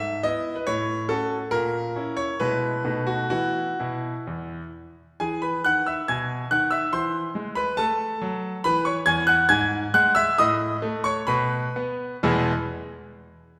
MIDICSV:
0, 0, Header, 1, 2, 480
1, 0, Start_track
1, 0, Key_signature, 4, "major"
1, 0, Tempo, 435098
1, 1693, Time_signature, 4, 2, 24, 8
1, 3154, Tempo, 469851
1, 5074, Tempo, 450113
1, 6034, Tempo, 429492
1, 10354, Tempo, 441176
1, 11794, Tempo, 471698
1, 14608, End_track
2, 0, Start_track
2, 0, Title_t, "Grand piano"
2, 0, Program_c, 0, 0
2, 0, Note_on_c, 0, 44, 69
2, 0, Note_on_c, 0, 76, 114
2, 225, Note_off_c, 0, 76, 0
2, 258, Note_off_c, 0, 44, 0
2, 258, Note_on_c, 0, 75, 105
2, 264, Note_on_c, 0, 59, 57
2, 269, Note_on_c, 0, 64, 62
2, 606, Note_off_c, 0, 59, 0
2, 609, Note_off_c, 0, 64, 0
2, 612, Note_on_c, 0, 71, 72
2, 618, Note_off_c, 0, 75, 0
2, 735, Note_on_c, 0, 73, 113
2, 736, Note_off_c, 0, 71, 0
2, 745, Note_on_c, 0, 45, 84
2, 1169, Note_off_c, 0, 73, 0
2, 1200, Note_on_c, 0, 69, 103
2, 1204, Note_off_c, 0, 45, 0
2, 1209, Note_on_c, 0, 61, 60
2, 1213, Note_on_c, 0, 66, 63
2, 1491, Note_off_c, 0, 69, 0
2, 1555, Note_off_c, 0, 61, 0
2, 1557, Note_off_c, 0, 66, 0
2, 1667, Note_on_c, 0, 70, 114
2, 1677, Note_on_c, 0, 46, 76
2, 2152, Note_off_c, 0, 46, 0
2, 2159, Note_on_c, 0, 61, 51
2, 2170, Note_on_c, 0, 64, 63
2, 2360, Note_off_c, 0, 70, 0
2, 2390, Note_on_c, 0, 73, 108
2, 2514, Note_off_c, 0, 61, 0
2, 2521, Note_off_c, 0, 64, 0
2, 2644, Note_on_c, 0, 71, 101
2, 2646, Note_off_c, 0, 73, 0
2, 2651, Note_on_c, 0, 47, 69
2, 2655, Note_on_c, 0, 59, 54
2, 2655, Note_on_c, 0, 64, 53
2, 2656, Note_on_c, 0, 56, 54
2, 3108, Note_off_c, 0, 56, 0
2, 3110, Note_off_c, 0, 59, 0
2, 3112, Note_off_c, 0, 64, 0
2, 3122, Note_off_c, 0, 47, 0
2, 3135, Note_on_c, 0, 63, 56
2, 3139, Note_on_c, 0, 47, 72
2, 3141, Note_on_c, 0, 59, 55
2, 3143, Note_on_c, 0, 57, 53
2, 3366, Note_on_c, 0, 66, 94
2, 3381, Note_off_c, 0, 71, 0
2, 3583, Note_off_c, 0, 57, 0
2, 3584, Note_off_c, 0, 59, 0
2, 3585, Note_off_c, 0, 63, 0
2, 3590, Note_off_c, 0, 66, 0
2, 3605, Note_on_c, 0, 66, 99
2, 3608, Note_off_c, 0, 47, 0
2, 3615, Note_on_c, 0, 64, 57
2, 3616, Note_on_c, 0, 59, 53
2, 3617, Note_on_c, 0, 52, 62
2, 3964, Note_off_c, 0, 52, 0
2, 4013, Note_off_c, 0, 64, 0
2, 4014, Note_off_c, 0, 59, 0
2, 4108, Note_off_c, 0, 66, 0
2, 4112, Note_on_c, 0, 64, 67
2, 4120, Note_on_c, 0, 47, 62
2, 4456, Note_off_c, 0, 47, 0
2, 4597, Note_on_c, 0, 40, 65
2, 4930, Note_off_c, 0, 40, 0
2, 5029, Note_off_c, 0, 64, 0
2, 5566, Note_on_c, 0, 80, 100
2, 5573, Note_on_c, 0, 52, 70
2, 5576, Note_on_c, 0, 68, 71
2, 5790, Note_off_c, 0, 68, 0
2, 5799, Note_on_c, 0, 83, 83
2, 5801, Note_off_c, 0, 80, 0
2, 5811, Note_on_c, 0, 71, 62
2, 5946, Note_off_c, 0, 52, 0
2, 6024, Note_off_c, 0, 71, 0
2, 6034, Note_off_c, 0, 83, 0
2, 6041, Note_on_c, 0, 90, 103
2, 6047, Note_on_c, 0, 51, 68
2, 6056, Note_on_c, 0, 78, 90
2, 6274, Note_off_c, 0, 78, 0
2, 6283, Note_off_c, 0, 90, 0
2, 6286, Note_on_c, 0, 88, 83
2, 6300, Note_on_c, 0, 76, 61
2, 6434, Note_off_c, 0, 51, 0
2, 6517, Note_off_c, 0, 76, 0
2, 6527, Note_off_c, 0, 88, 0
2, 6531, Note_on_c, 0, 92, 96
2, 6538, Note_on_c, 0, 47, 69
2, 6541, Note_on_c, 0, 80, 79
2, 6918, Note_off_c, 0, 47, 0
2, 6982, Note_off_c, 0, 80, 0
2, 7007, Note_on_c, 0, 90, 107
2, 7010, Note_off_c, 0, 92, 0
2, 7011, Note_on_c, 0, 51, 72
2, 7021, Note_on_c, 0, 78, 76
2, 7150, Note_off_c, 0, 90, 0
2, 7226, Note_on_c, 0, 88, 105
2, 7236, Note_off_c, 0, 78, 0
2, 7243, Note_on_c, 0, 76, 74
2, 7389, Note_off_c, 0, 51, 0
2, 7448, Note_off_c, 0, 88, 0
2, 7464, Note_off_c, 0, 76, 0
2, 7474, Note_on_c, 0, 84, 102
2, 7478, Note_on_c, 0, 52, 74
2, 7486, Note_on_c, 0, 72, 70
2, 7862, Note_off_c, 0, 52, 0
2, 7907, Note_off_c, 0, 84, 0
2, 7947, Note_on_c, 0, 56, 71
2, 8157, Note_off_c, 0, 72, 0
2, 8175, Note_on_c, 0, 83, 99
2, 8192, Note_on_c, 0, 71, 84
2, 8335, Note_off_c, 0, 56, 0
2, 8418, Note_off_c, 0, 71, 0
2, 8418, Note_on_c, 0, 81, 108
2, 8427, Note_off_c, 0, 83, 0
2, 8431, Note_on_c, 0, 57, 72
2, 8438, Note_on_c, 0, 69, 78
2, 8819, Note_off_c, 0, 57, 0
2, 8913, Note_on_c, 0, 54, 80
2, 9298, Note_off_c, 0, 54, 0
2, 9353, Note_off_c, 0, 69, 0
2, 9387, Note_off_c, 0, 81, 0
2, 9391, Note_on_c, 0, 83, 121
2, 9402, Note_on_c, 0, 52, 86
2, 9407, Note_on_c, 0, 71, 96
2, 9623, Note_on_c, 0, 85, 102
2, 9624, Note_off_c, 0, 71, 0
2, 9632, Note_off_c, 0, 83, 0
2, 9640, Note_on_c, 0, 73, 77
2, 9781, Note_off_c, 0, 52, 0
2, 9843, Note_off_c, 0, 85, 0
2, 9855, Note_on_c, 0, 92, 127
2, 9859, Note_off_c, 0, 73, 0
2, 9863, Note_on_c, 0, 40, 89
2, 9871, Note_on_c, 0, 80, 106
2, 10005, Note_off_c, 0, 92, 0
2, 10090, Note_on_c, 0, 90, 127
2, 10096, Note_off_c, 0, 80, 0
2, 10111, Note_on_c, 0, 78, 93
2, 10253, Note_off_c, 0, 40, 0
2, 10336, Note_on_c, 0, 92, 127
2, 10337, Note_off_c, 0, 78, 0
2, 10344, Note_off_c, 0, 90, 0
2, 10346, Note_on_c, 0, 44, 95
2, 10348, Note_on_c, 0, 80, 100
2, 10730, Note_off_c, 0, 44, 0
2, 10778, Note_off_c, 0, 92, 0
2, 10793, Note_off_c, 0, 80, 0
2, 10827, Note_on_c, 0, 56, 85
2, 10829, Note_on_c, 0, 90, 127
2, 10836, Note_on_c, 0, 78, 99
2, 11045, Note_off_c, 0, 90, 0
2, 11054, Note_on_c, 0, 88, 127
2, 11057, Note_off_c, 0, 78, 0
2, 11068, Note_on_c, 0, 76, 104
2, 11213, Note_off_c, 0, 56, 0
2, 11278, Note_off_c, 0, 88, 0
2, 11293, Note_off_c, 0, 76, 0
2, 11311, Note_on_c, 0, 87, 127
2, 11319, Note_on_c, 0, 45, 92
2, 11327, Note_on_c, 0, 75, 94
2, 11703, Note_off_c, 0, 45, 0
2, 11788, Note_on_c, 0, 57, 89
2, 11991, Note_off_c, 0, 75, 0
2, 12010, Note_on_c, 0, 85, 118
2, 12025, Note_off_c, 0, 87, 0
2, 12026, Note_on_c, 0, 73, 90
2, 12155, Note_off_c, 0, 85, 0
2, 12163, Note_off_c, 0, 57, 0
2, 12242, Note_on_c, 0, 83, 107
2, 12244, Note_off_c, 0, 73, 0
2, 12251, Note_on_c, 0, 47, 85
2, 12252, Note_on_c, 0, 71, 85
2, 12641, Note_off_c, 0, 47, 0
2, 12743, Note_on_c, 0, 59, 79
2, 13142, Note_off_c, 0, 59, 0
2, 13197, Note_off_c, 0, 71, 0
2, 13222, Note_on_c, 0, 40, 110
2, 13222, Note_on_c, 0, 47, 92
2, 13227, Note_on_c, 0, 56, 87
2, 13228, Note_on_c, 0, 59, 90
2, 13228, Note_on_c, 0, 88, 74
2, 13231, Note_on_c, 0, 64, 87
2, 13232, Note_off_c, 0, 83, 0
2, 13236, Note_on_c, 0, 68, 83
2, 13503, Note_off_c, 0, 40, 0
2, 13503, Note_off_c, 0, 47, 0
2, 13505, Note_off_c, 0, 56, 0
2, 13505, Note_off_c, 0, 59, 0
2, 13505, Note_off_c, 0, 88, 0
2, 13507, Note_off_c, 0, 64, 0
2, 13510, Note_off_c, 0, 68, 0
2, 14608, End_track
0, 0, End_of_file